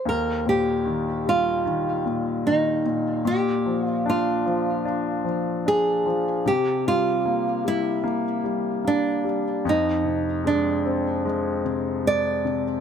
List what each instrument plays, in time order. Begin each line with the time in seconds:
0.05 grand piano D#2, nylon-string guitar A#4
0.46 grand piano A#2, nylon-string guitar G4
0.85 grand piano D#3
1.26 grand piano G3, nylon-string guitar F4
1.65 grand piano D#3
2.05 grand piano A#2
2.46 grand piano D#3, nylon-string guitar D#4
2.86 grand piano A#2
3.25 grand piano A#2, nylon-string guitar G4
3.66 grand piano F3
3.86 nylon-string guitar F4
4.06 grand piano D4, nylon-string guitar F4
4.46 grand piano F3
4.85 grand piano D4
5.24 grand piano F3
5.66 grand piano D4, nylon-string guitar G#4
6.06 grand piano F3
6.46 grand piano C3, nylon-string guitar G4
6.86 grand piano G3, nylon-string guitar F4
7.26 grand piano A#3
7.64 grand piano G3, nylon-string guitar E4
8.04 grand piano A#3
8.44 grand piano G3
8.85 grand piano A#3, nylon-string guitar D4
9.24 grand piano G3
9.65 grand piano F2
9.69 nylon-string guitar D#4
10.04 grand piano C3
10.44 grand piano G#3, nylon-string guitar D4
10.85 grand piano C4
11.25 grand piano G#3
11.65 grand piano C3
12.04 grand piano G#3, nylon-string guitar D5
12.45 grand piano C3